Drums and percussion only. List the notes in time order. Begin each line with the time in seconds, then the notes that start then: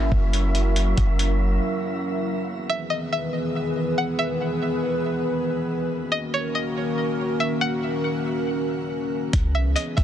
0.12 kick
0.33 closed hi-hat
0.55 closed hi-hat
0.76 closed hi-hat
0.97 kick, closed hi-hat
1.19 closed hi-hat
9.33 kick, closed hi-hat
9.76 closed hi-hat
9.98 kick, closed hi-hat